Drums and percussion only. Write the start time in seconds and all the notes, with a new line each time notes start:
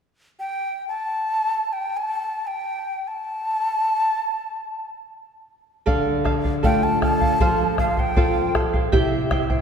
5.87 bombo low
6.25 bombo rim, bombo low
6.45 bombo low
6.64 bombo low
7.02 bombo rim, bombo low
7.21 bombo low
7.40 bombo low
7.78 bombo rim, bombo low
7.97 bombo low
8.17 bombo low
8.55 bombo rim, bombo low
8.74 bombo low
8.93 bombo low
9.31 bombo rim, bombo low
9.50 bombo low